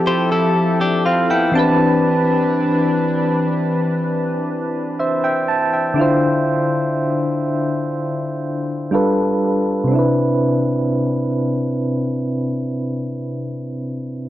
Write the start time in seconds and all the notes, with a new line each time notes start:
Already playing: F3 C4 E4 G4 A4
0.07 G4 C5
0.32 E4 A4
0.81 D4 G4
1.05 C4 F4 F5
1.30 B3 E4 G5
1.52 E3 C4 D4 B4 A5
1.57 G4 B4
4.99 C5 E5
5.24 E5 G5
5.48 A5
5.73 E5 G5
5.94 D3 D4 E4
6.00 F4 C5
8.91 G3 D4 F4 A4 B4
9.84 C3 C4
9.91 D4 E4
9.99 B4